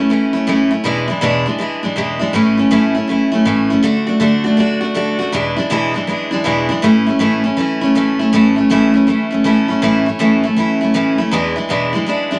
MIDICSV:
0, 0, Header, 1, 2, 480
1, 0, Start_track
1, 0, Key_signature, 3, "major"
1, 0, Tempo, 374065
1, 1088, Time_signature, 4, 2, 24, 8
1, 15900, End_track
2, 0, Start_track
2, 0, Title_t, "Steel-string acoustic guitar"
2, 0, Program_c, 0, 25
2, 0, Note_on_c, 0, 61, 53
2, 130, Note_on_c, 0, 52, 65
2, 139, Note_off_c, 0, 61, 0
2, 141, Note_on_c, 0, 57, 67
2, 159, Note_on_c, 0, 61, 72
2, 171, Note_on_c, 0, 64, 75
2, 409, Note_off_c, 0, 64, 0
2, 424, Note_on_c, 0, 64, 64
2, 437, Note_off_c, 0, 61, 0
2, 442, Note_off_c, 0, 52, 0
2, 447, Note_off_c, 0, 57, 0
2, 452, Note_on_c, 0, 61, 53
2, 471, Note_on_c, 0, 57, 52
2, 601, Note_off_c, 0, 64, 0
2, 602, Note_on_c, 0, 45, 79
2, 606, Note_off_c, 0, 57, 0
2, 610, Note_on_c, 0, 52, 90
2, 612, Note_off_c, 0, 61, 0
2, 621, Note_on_c, 0, 57, 84
2, 628, Note_on_c, 0, 61, 94
2, 629, Note_on_c, 0, 64, 81
2, 892, Note_off_c, 0, 64, 0
2, 907, Note_on_c, 0, 64, 65
2, 911, Note_off_c, 0, 61, 0
2, 917, Note_off_c, 0, 45, 0
2, 921, Note_off_c, 0, 52, 0
2, 926, Note_off_c, 0, 57, 0
2, 926, Note_on_c, 0, 61, 55
2, 948, Note_on_c, 0, 57, 52
2, 1074, Note_on_c, 0, 40, 84
2, 1081, Note_on_c, 0, 47, 83
2, 1082, Note_off_c, 0, 64, 0
2, 1088, Note_off_c, 0, 57, 0
2, 1089, Note_on_c, 0, 52, 90
2, 1091, Note_off_c, 0, 61, 0
2, 1093, Note_on_c, 0, 56, 99
2, 1098, Note_on_c, 0, 62, 102
2, 1104, Note_on_c, 0, 64, 105
2, 1365, Note_off_c, 0, 64, 0
2, 1380, Note_on_c, 0, 64, 59
2, 1385, Note_off_c, 0, 62, 0
2, 1392, Note_off_c, 0, 40, 0
2, 1394, Note_off_c, 0, 56, 0
2, 1396, Note_off_c, 0, 47, 0
2, 1400, Note_off_c, 0, 52, 0
2, 1401, Note_on_c, 0, 62, 49
2, 1410, Note_on_c, 0, 56, 55
2, 1425, Note_on_c, 0, 52, 50
2, 1553, Note_off_c, 0, 52, 0
2, 1554, Note_on_c, 0, 40, 90
2, 1558, Note_off_c, 0, 64, 0
2, 1560, Note_off_c, 0, 56, 0
2, 1563, Note_off_c, 0, 62, 0
2, 1563, Note_on_c, 0, 47, 99
2, 1568, Note_on_c, 0, 52, 86
2, 1576, Note_on_c, 0, 56, 90
2, 1579, Note_on_c, 0, 62, 99
2, 1586, Note_on_c, 0, 64, 94
2, 1856, Note_off_c, 0, 64, 0
2, 1871, Note_off_c, 0, 40, 0
2, 1871, Note_off_c, 0, 62, 0
2, 1872, Note_on_c, 0, 64, 62
2, 1876, Note_off_c, 0, 47, 0
2, 1879, Note_off_c, 0, 52, 0
2, 1882, Note_off_c, 0, 56, 0
2, 1886, Note_on_c, 0, 62, 57
2, 1901, Note_on_c, 0, 56, 52
2, 1911, Note_on_c, 0, 52, 48
2, 2018, Note_off_c, 0, 52, 0
2, 2033, Note_on_c, 0, 52, 70
2, 2034, Note_off_c, 0, 56, 0
2, 2043, Note_off_c, 0, 64, 0
2, 2049, Note_on_c, 0, 56, 70
2, 2050, Note_off_c, 0, 62, 0
2, 2064, Note_on_c, 0, 62, 74
2, 2079, Note_on_c, 0, 64, 75
2, 2332, Note_off_c, 0, 64, 0
2, 2344, Note_off_c, 0, 62, 0
2, 2347, Note_on_c, 0, 64, 65
2, 2351, Note_off_c, 0, 52, 0
2, 2359, Note_off_c, 0, 56, 0
2, 2359, Note_on_c, 0, 62, 56
2, 2373, Note_on_c, 0, 56, 55
2, 2384, Note_on_c, 0, 52, 46
2, 2509, Note_off_c, 0, 52, 0
2, 2512, Note_on_c, 0, 40, 79
2, 2520, Note_off_c, 0, 64, 0
2, 2521, Note_off_c, 0, 56, 0
2, 2521, Note_on_c, 0, 47, 74
2, 2525, Note_on_c, 0, 52, 72
2, 2526, Note_off_c, 0, 62, 0
2, 2536, Note_on_c, 0, 56, 82
2, 2539, Note_on_c, 0, 62, 81
2, 2543, Note_on_c, 0, 64, 91
2, 2798, Note_off_c, 0, 64, 0
2, 2813, Note_on_c, 0, 64, 59
2, 2815, Note_off_c, 0, 62, 0
2, 2828, Note_off_c, 0, 56, 0
2, 2830, Note_off_c, 0, 40, 0
2, 2831, Note_on_c, 0, 62, 53
2, 2834, Note_off_c, 0, 47, 0
2, 2836, Note_off_c, 0, 52, 0
2, 2844, Note_on_c, 0, 56, 59
2, 2855, Note_on_c, 0, 52, 54
2, 2986, Note_off_c, 0, 52, 0
2, 2991, Note_on_c, 0, 45, 89
2, 2993, Note_off_c, 0, 64, 0
2, 3001, Note_off_c, 0, 62, 0
2, 3002, Note_on_c, 0, 52, 94
2, 3003, Note_off_c, 0, 56, 0
2, 3008, Note_on_c, 0, 57, 82
2, 3017, Note_on_c, 0, 61, 97
2, 3022, Note_on_c, 0, 64, 99
2, 3287, Note_off_c, 0, 64, 0
2, 3303, Note_on_c, 0, 64, 55
2, 3309, Note_off_c, 0, 45, 0
2, 3312, Note_off_c, 0, 61, 0
2, 3314, Note_off_c, 0, 52, 0
2, 3318, Note_off_c, 0, 57, 0
2, 3328, Note_on_c, 0, 61, 57
2, 3347, Note_on_c, 0, 57, 50
2, 3473, Note_off_c, 0, 57, 0
2, 3474, Note_on_c, 0, 45, 94
2, 3477, Note_off_c, 0, 64, 0
2, 3481, Note_off_c, 0, 61, 0
2, 3481, Note_on_c, 0, 52, 91
2, 3488, Note_on_c, 0, 57, 88
2, 3497, Note_on_c, 0, 61, 100
2, 3502, Note_on_c, 0, 64, 84
2, 3765, Note_off_c, 0, 64, 0
2, 3780, Note_on_c, 0, 64, 63
2, 3789, Note_off_c, 0, 61, 0
2, 3790, Note_off_c, 0, 45, 0
2, 3793, Note_off_c, 0, 52, 0
2, 3797, Note_off_c, 0, 57, 0
2, 3805, Note_on_c, 0, 61, 53
2, 3826, Note_on_c, 0, 57, 50
2, 3947, Note_on_c, 0, 52, 59
2, 3951, Note_off_c, 0, 57, 0
2, 3955, Note_off_c, 0, 64, 0
2, 3964, Note_off_c, 0, 61, 0
2, 3966, Note_on_c, 0, 57, 67
2, 3980, Note_on_c, 0, 61, 68
2, 3994, Note_on_c, 0, 64, 77
2, 4241, Note_off_c, 0, 64, 0
2, 4256, Note_on_c, 0, 64, 66
2, 4263, Note_off_c, 0, 61, 0
2, 4266, Note_off_c, 0, 52, 0
2, 4276, Note_off_c, 0, 57, 0
2, 4279, Note_on_c, 0, 61, 61
2, 4298, Note_on_c, 0, 57, 53
2, 4432, Note_on_c, 0, 45, 76
2, 4433, Note_off_c, 0, 64, 0
2, 4435, Note_off_c, 0, 57, 0
2, 4436, Note_on_c, 0, 52, 89
2, 4439, Note_off_c, 0, 61, 0
2, 4451, Note_on_c, 0, 57, 82
2, 4454, Note_on_c, 0, 61, 92
2, 4459, Note_on_c, 0, 64, 85
2, 4734, Note_off_c, 0, 64, 0
2, 4749, Note_off_c, 0, 45, 0
2, 4750, Note_on_c, 0, 64, 62
2, 4751, Note_off_c, 0, 52, 0
2, 4758, Note_off_c, 0, 57, 0
2, 4760, Note_off_c, 0, 61, 0
2, 4773, Note_on_c, 0, 61, 60
2, 4787, Note_on_c, 0, 57, 55
2, 4907, Note_off_c, 0, 57, 0
2, 4910, Note_on_c, 0, 50, 88
2, 4920, Note_off_c, 0, 64, 0
2, 4922, Note_on_c, 0, 57, 94
2, 4928, Note_off_c, 0, 61, 0
2, 4933, Note_on_c, 0, 62, 94
2, 4943, Note_on_c, 0, 66, 97
2, 5201, Note_off_c, 0, 66, 0
2, 5217, Note_on_c, 0, 66, 57
2, 5225, Note_off_c, 0, 62, 0
2, 5228, Note_off_c, 0, 50, 0
2, 5234, Note_off_c, 0, 57, 0
2, 5240, Note_on_c, 0, 62, 57
2, 5259, Note_on_c, 0, 57, 49
2, 5383, Note_off_c, 0, 57, 0
2, 5386, Note_on_c, 0, 50, 88
2, 5393, Note_off_c, 0, 62, 0
2, 5394, Note_off_c, 0, 66, 0
2, 5399, Note_on_c, 0, 57, 86
2, 5409, Note_on_c, 0, 62, 98
2, 5414, Note_on_c, 0, 66, 100
2, 5680, Note_off_c, 0, 66, 0
2, 5696, Note_on_c, 0, 66, 61
2, 5704, Note_off_c, 0, 62, 0
2, 5706, Note_off_c, 0, 50, 0
2, 5712, Note_off_c, 0, 57, 0
2, 5719, Note_on_c, 0, 62, 54
2, 5737, Note_on_c, 0, 57, 46
2, 5858, Note_off_c, 0, 57, 0
2, 5862, Note_on_c, 0, 50, 73
2, 5873, Note_off_c, 0, 66, 0
2, 5874, Note_on_c, 0, 57, 64
2, 5875, Note_off_c, 0, 62, 0
2, 5890, Note_on_c, 0, 62, 78
2, 5903, Note_on_c, 0, 66, 82
2, 6154, Note_off_c, 0, 66, 0
2, 6169, Note_on_c, 0, 66, 65
2, 6181, Note_off_c, 0, 62, 0
2, 6185, Note_off_c, 0, 50, 0
2, 6190, Note_off_c, 0, 57, 0
2, 6196, Note_on_c, 0, 62, 56
2, 6214, Note_on_c, 0, 57, 50
2, 6339, Note_off_c, 0, 57, 0
2, 6346, Note_on_c, 0, 50, 79
2, 6350, Note_off_c, 0, 66, 0
2, 6353, Note_off_c, 0, 62, 0
2, 6355, Note_on_c, 0, 57, 88
2, 6368, Note_on_c, 0, 62, 89
2, 6376, Note_on_c, 0, 66, 85
2, 6641, Note_off_c, 0, 66, 0
2, 6656, Note_on_c, 0, 66, 64
2, 6667, Note_off_c, 0, 50, 0
2, 6668, Note_off_c, 0, 62, 0
2, 6671, Note_off_c, 0, 57, 0
2, 6684, Note_on_c, 0, 62, 58
2, 6701, Note_on_c, 0, 57, 53
2, 6831, Note_on_c, 0, 40, 89
2, 6834, Note_off_c, 0, 66, 0
2, 6840, Note_on_c, 0, 47, 88
2, 6843, Note_off_c, 0, 62, 0
2, 6844, Note_on_c, 0, 52, 94
2, 6850, Note_off_c, 0, 57, 0
2, 6855, Note_on_c, 0, 56, 88
2, 6859, Note_on_c, 0, 62, 104
2, 6862, Note_on_c, 0, 64, 88
2, 7125, Note_off_c, 0, 64, 0
2, 7140, Note_on_c, 0, 64, 66
2, 7148, Note_off_c, 0, 62, 0
2, 7149, Note_off_c, 0, 40, 0
2, 7154, Note_off_c, 0, 47, 0
2, 7156, Note_off_c, 0, 52, 0
2, 7159, Note_off_c, 0, 56, 0
2, 7163, Note_on_c, 0, 62, 64
2, 7174, Note_on_c, 0, 56, 49
2, 7186, Note_on_c, 0, 52, 51
2, 7309, Note_off_c, 0, 52, 0
2, 7312, Note_on_c, 0, 40, 88
2, 7316, Note_off_c, 0, 64, 0
2, 7317, Note_off_c, 0, 56, 0
2, 7319, Note_on_c, 0, 47, 90
2, 7324, Note_on_c, 0, 52, 101
2, 7328, Note_off_c, 0, 62, 0
2, 7332, Note_on_c, 0, 56, 89
2, 7341, Note_on_c, 0, 62, 100
2, 7344, Note_on_c, 0, 64, 105
2, 7608, Note_off_c, 0, 64, 0
2, 7623, Note_on_c, 0, 64, 57
2, 7628, Note_off_c, 0, 62, 0
2, 7630, Note_off_c, 0, 40, 0
2, 7633, Note_off_c, 0, 47, 0
2, 7636, Note_off_c, 0, 52, 0
2, 7640, Note_off_c, 0, 56, 0
2, 7644, Note_on_c, 0, 62, 64
2, 7656, Note_on_c, 0, 56, 56
2, 7670, Note_on_c, 0, 52, 52
2, 7776, Note_off_c, 0, 52, 0
2, 7792, Note_on_c, 0, 52, 68
2, 7793, Note_off_c, 0, 56, 0
2, 7798, Note_off_c, 0, 64, 0
2, 7805, Note_off_c, 0, 62, 0
2, 7808, Note_on_c, 0, 56, 64
2, 7820, Note_on_c, 0, 62, 77
2, 7834, Note_on_c, 0, 64, 75
2, 8079, Note_off_c, 0, 64, 0
2, 8094, Note_on_c, 0, 64, 65
2, 8097, Note_off_c, 0, 62, 0
2, 8110, Note_off_c, 0, 52, 0
2, 8113, Note_on_c, 0, 62, 61
2, 8114, Note_off_c, 0, 56, 0
2, 8129, Note_on_c, 0, 56, 58
2, 8137, Note_on_c, 0, 52, 48
2, 8264, Note_on_c, 0, 40, 90
2, 8268, Note_off_c, 0, 52, 0
2, 8271, Note_off_c, 0, 56, 0
2, 8274, Note_off_c, 0, 64, 0
2, 8275, Note_off_c, 0, 62, 0
2, 8276, Note_on_c, 0, 47, 86
2, 8283, Note_on_c, 0, 52, 89
2, 8287, Note_on_c, 0, 56, 87
2, 8290, Note_on_c, 0, 62, 83
2, 8298, Note_on_c, 0, 64, 88
2, 8565, Note_off_c, 0, 64, 0
2, 8580, Note_off_c, 0, 62, 0
2, 8581, Note_on_c, 0, 64, 64
2, 8587, Note_off_c, 0, 40, 0
2, 8593, Note_off_c, 0, 47, 0
2, 8594, Note_off_c, 0, 56, 0
2, 8596, Note_off_c, 0, 52, 0
2, 8596, Note_on_c, 0, 62, 55
2, 8610, Note_on_c, 0, 56, 61
2, 8624, Note_on_c, 0, 52, 55
2, 8746, Note_off_c, 0, 52, 0
2, 8753, Note_on_c, 0, 45, 92
2, 8758, Note_off_c, 0, 64, 0
2, 8762, Note_on_c, 0, 52, 89
2, 8765, Note_off_c, 0, 62, 0
2, 8766, Note_off_c, 0, 56, 0
2, 8772, Note_on_c, 0, 57, 93
2, 8778, Note_on_c, 0, 61, 92
2, 8781, Note_on_c, 0, 64, 102
2, 9052, Note_off_c, 0, 64, 0
2, 9067, Note_on_c, 0, 64, 61
2, 9072, Note_off_c, 0, 45, 0
2, 9076, Note_off_c, 0, 52, 0
2, 9077, Note_off_c, 0, 61, 0
2, 9081, Note_off_c, 0, 57, 0
2, 9092, Note_on_c, 0, 61, 60
2, 9106, Note_on_c, 0, 57, 50
2, 9229, Note_on_c, 0, 45, 86
2, 9233, Note_off_c, 0, 57, 0
2, 9239, Note_on_c, 0, 52, 87
2, 9240, Note_off_c, 0, 61, 0
2, 9241, Note_off_c, 0, 64, 0
2, 9248, Note_on_c, 0, 57, 90
2, 9255, Note_on_c, 0, 61, 93
2, 9260, Note_on_c, 0, 64, 86
2, 9529, Note_off_c, 0, 64, 0
2, 9544, Note_on_c, 0, 64, 58
2, 9550, Note_off_c, 0, 45, 0
2, 9553, Note_off_c, 0, 61, 0
2, 9555, Note_off_c, 0, 52, 0
2, 9560, Note_off_c, 0, 57, 0
2, 9568, Note_on_c, 0, 61, 52
2, 9589, Note_on_c, 0, 57, 45
2, 9710, Note_on_c, 0, 52, 67
2, 9713, Note_off_c, 0, 57, 0
2, 9720, Note_off_c, 0, 64, 0
2, 9726, Note_off_c, 0, 61, 0
2, 9728, Note_on_c, 0, 57, 73
2, 9742, Note_on_c, 0, 61, 69
2, 9756, Note_on_c, 0, 64, 79
2, 10009, Note_off_c, 0, 64, 0
2, 10024, Note_on_c, 0, 64, 62
2, 10031, Note_off_c, 0, 52, 0
2, 10038, Note_off_c, 0, 61, 0
2, 10040, Note_off_c, 0, 57, 0
2, 10053, Note_on_c, 0, 61, 61
2, 10071, Note_on_c, 0, 57, 46
2, 10200, Note_off_c, 0, 57, 0
2, 10201, Note_off_c, 0, 64, 0
2, 10203, Note_on_c, 0, 45, 73
2, 10209, Note_on_c, 0, 52, 88
2, 10212, Note_off_c, 0, 61, 0
2, 10216, Note_on_c, 0, 57, 87
2, 10227, Note_on_c, 0, 61, 83
2, 10236, Note_on_c, 0, 64, 89
2, 10498, Note_off_c, 0, 64, 0
2, 10513, Note_on_c, 0, 64, 61
2, 10518, Note_off_c, 0, 45, 0
2, 10521, Note_off_c, 0, 52, 0
2, 10524, Note_off_c, 0, 57, 0
2, 10524, Note_off_c, 0, 61, 0
2, 10539, Note_on_c, 0, 61, 50
2, 10558, Note_on_c, 0, 57, 53
2, 10685, Note_off_c, 0, 57, 0
2, 10685, Note_off_c, 0, 64, 0
2, 10685, Note_on_c, 0, 45, 94
2, 10692, Note_on_c, 0, 52, 91
2, 10693, Note_off_c, 0, 61, 0
2, 10700, Note_on_c, 0, 57, 94
2, 10708, Note_on_c, 0, 61, 98
2, 10714, Note_on_c, 0, 64, 102
2, 10970, Note_off_c, 0, 64, 0
2, 10985, Note_on_c, 0, 64, 64
2, 10994, Note_off_c, 0, 61, 0
2, 10999, Note_off_c, 0, 45, 0
2, 11003, Note_off_c, 0, 52, 0
2, 11007, Note_off_c, 0, 57, 0
2, 11009, Note_on_c, 0, 61, 51
2, 11033, Note_on_c, 0, 57, 46
2, 11160, Note_on_c, 0, 45, 94
2, 11162, Note_off_c, 0, 64, 0
2, 11163, Note_off_c, 0, 57, 0
2, 11169, Note_off_c, 0, 61, 0
2, 11169, Note_on_c, 0, 52, 97
2, 11178, Note_on_c, 0, 57, 99
2, 11184, Note_on_c, 0, 61, 93
2, 11190, Note_on_c, 0, 64, 92
2, 11452, Note_off_c, 0, 64, 0
2, 11467, Note_on_c, 0, 64, 61
2, 11474, Note_off_c, 0, 61, 0
2, 11477, Note_off_c, 0, 45, 0
2, 11482, Note_off_c, 0, 52, 0
2, 11486, Note_off_c, 0, 57, 0
2, 11490, Note_on_c, 0, 61, 50
2, 11510, Note_on_c, 0, 57, 53
2, 11634, Note_off_c, 0, 57, 0
2, 11637, Note_on_c, 0, 52, 66
2, 11643, Note_off_c, 0, 64, 0
2, 11647, Note_off_c, 0, 61, 0
2, 11649, Note_on_c, 0, 57, 65
2, 11662, Note_on_c, 0, 61, 67
2, 11678, Note_on_c, 0, 64, 69
2, 11926, Note_off_c, 0, 64, 0
2, 11941, Note_on_c, 0, 64, 58
2, 11948, Note_off_c, 0, 61, 0
2, 11956, Note_off_c, 0, 52, 0
2, 11962, Note_off_c, 0, 57, 0
2, 11963, Note_on_c, 0, 61, 54
2, 11988, Note_on_c, 0, 57, 53
2, 12115, Note_off_c, 0, 57, 0
2, 12115, Note_on_c, 0, 45, 77
2, 12120, Note_off_c, 0, 64, 0
2, 12121, Note_off_c, 0, 61, 0
2, 12121, Note_on_c, 0, 52, 73
2, 12130, Note_on_c, 0, 57, 86
2, 12137, Note_on_c, 0, 61, 81
2, 12147, Note_on_c, 0, 64, 86
2, 12408, Note_off_c, 0, 64, 0
2, 12423, Note_on_c, 0, 64, 59
2, 12434, Note_off_c, 0, 61, 0
2, 12435, Note_off_c, 0, 45, 0
2, 12438, Note_off_c, 0, 52, 0
2, 12443, Note_off_c, 0, 57, 0
2, 12450, Note_on_c, 0, 61, 53
2, 12472, Note_on_c, 0, 57, 48
2, 12598, Note_off_c, 0, 57, 0
2, 12599, Note_on_c, 0, 45, 94
2, 12601, Note_off_c, 0, 64, 0
2, 12606, Note_off_c, 0, 61, 0
2, 12606, Note_on_c, 0, 52, 94
2, 12614, Note_on_c, 0, 57, 102
2, 12622, Note_on_c, 0, 61, 101
2, 12627, Note_on_c, 0, 64, 91
2, 12893, Note_off_c, 0, 64, 0
2, 12908, Note_on_c, 0, 64, 57
2, 12917, Note_off_c, 0, 45, 0
2, 12918, Note_off_c, 0, 61, 0
2, 12921, Note_off_c, 0, 52, 0
2, 12925, Note_off_c, 0, 57, 0
2, 12934, Note_on_c, 0, 61, 55
2, 12950, Note_on_c, 0, 57, 46
2, 13076, Note_off_c, 0, 57, 0
2, 13076, Note_on_c, 0, 45, 89
2, 13083, Note_off_c, 0, 61, 0
2, 13084, Note_off_c, 0, 64, 0
2, 13085, Note_on_c, 0, 52, 92
2, 13091, Note_on_c, 0, 57, 99
2, 13099, Note_on_c, 0, 61, 94
2, 13109, Note_on_c, 0, 64, 92
2, 13374, Note_off_c, 0, 64, 0
2, 13389, Note_on_c, 0, 64, 65
2, 13396, Note_off_c, 0, 45, 0
2, 13396, Note_off_c, 0, 61, 0
2, 13401, Note_off_c, 0, 52, 0
2, 13404, Note_off_c, 0, 57, 0
2, 13411, Note_on_c, 0, 61, 55
2, 13432, Note_on_c, 0, 57, 50
2, 13556, Note_off_c, 0, 57, 0
2, 13557, Note_on_c, 0, 52, 65
2, 13565, Note_off_c, 0, 64, 0
2, 13572, Note_on_c, 0, 57, 69
2, 13576, Note_off_c, 0, 61, 0
2, 13589, Note_on_c, 0, 61, 71
2, 13599, Note_on_c, 0, 64, 74
2, 13854, Note_off_c, 0, 64, 0
2, 13869, Note_on_c, 0, 64, 66
2, 13877, Note_off_c, 0, 52, 0
2, 13881, Note_off_c, 0, 61, 0
2, 13884, Note_off_c, 0, 57, 0
2, 13896, Note_on_c, 0, 61, 57
2, 13916, Note_on_c, 0, 57, 50
2, 14037, Note_on_c, 0, 45, 79
2, 14041, Note_off_c, 0, 57, 0
2, 14045, Note_off_c, 0, 64, 0
2, 14046, Note_on_c, 0, 52, 87
2, 14047, Note_off_c, 0, 61, 0
2, 14056, Note_on_c, 0, 57, 82
2, 14062, Note_on_c, 0, 61, 98
2, 14068, Note_on_c, 0, 64, 85
2, 14333, Note_off_c, 0, 64, 0
2, 14349, Note_on_c, 0, 64, 64
2, 14355, Note_off_c, 0, 61, 0
2, 14357, Note_off_c, 0, 45, 0
2, 14362, Note_off_c, 0, 52, 0
2, 14367, Note_off_c, 0, 57, 0
2, 14370, Note_on_c, 0, 61, 64
2, 14391, Note_on_c, 0, 57, 51
2, 14518, Note_on_c, 0, 40, 99
2, 14525, Note_off_c, 0, 64, 0
2, 14531, Note_on_c, 0, 47, 94
2, 14535, Note_on_c, 0, 52, 96
2, 14536, Note_off_c, 0, 57, 0
2, 14536, Note_off_c, 0, 61, 0
2, 14541, Note_on_c, 0, 56, 102
2, 14546, Note_on_c, 0, 62, 93
2, 14549, Note_on_c, 0, 64, 97
2, 14815, Note_off_c, 0, 64, 0
2, 14830, Note_on_c, 0, 64, 65
2, 14832, Note_off_c, 0, 62, 0
2, 14838, Note_off_c, 0, 40, 0
2, 14843, Note_off_c, 0, 56, 0
2, 14845, Note_off_c, 0, 47, 0
2, 14846, Note_off_c, 0, 52, 0
2, 14847, Note_on_c, 0, 62, 57
2, 14858, Note_on_c, 0, 56, 49
2, 14871, Note_on_c, 0, 52, 51
2, 14998, Note_off_c, 0, 52, 0
2, 14999, Note_on_c, 0, 40, 80
2, 15006, Note_off_c, 0, 56, 0
2, 15006, Note_off_c, 0, 64, 0
2, 15008, Note_off_c, 0, 62, 0
2, 15010, Note_on_c, 0, 47, 91
2, 15013, Note_on_c, 0, 52, 90
2, 15021, Note_on_c, 0, 56, 92
2, 15023, Note_on_c, 0, 62, 99
2, 15032, Note_on_c, 0, 64, 90
2, 15290, Note_off_c, 0, 64, 0
2, 15305, Note_on_c, 0, 64, 57
2, 15306, Note_off_c, 0, 62, 0
2, 15319, Note_off_c, 0, 40, 0
2, 15321, Note_off_c, 0, 56, 0
2, 15322, Note_on_c, 0, 62, 55
2, 15324, Note_off_c, 0, 47, 0
2, 15326, Note_off_c, 0, 52, 0
2, 15337, Note_on_c, 0, 56, 60
2, 15352, Note_on_c, 0, 52, 52
2, 15465, Note_off_c, 0, 52, 0
2, 15480, Note_on_c, 0, 52, 62
2, 15482, Note_off_c, 0, 56, 0
2, 15484, Note_off_c, 0, 64, 0
2, 15492, Note_off_c, 0, 62, 0
2, 15497, Note_on_c, 0, 56, 70
2, 15510, Note_on_c, 0, 62, 77
2, 15521, Note_on_c, 0, 64, 73
2, 15778, Note_off_c, 0, 64, 0
2, 15793, Note_off_c, 0, 62, 0
2, 15794, Note_on_c, 0, 64, 61
2, 15800, Note_off_c, 0, 52, 0
2, 15808, Note_off_c, 0, 56, 0
2, 15808, Note_on_c, 0, 62, 62
2, 15825, Note_on_c, 0, 56, 59
2, 15834, Note_on_c, 0, 52, 49
2, 15900, Note_off_c, 0, 52, 0
2, 15900, Note_off_c, 0, 56, 0
2, 15900, Note_off_c, 0, 62, 0
2, 15900, Note_off_c, 0, 64, 0
2, 15900, End_track
0, 0, End_of_file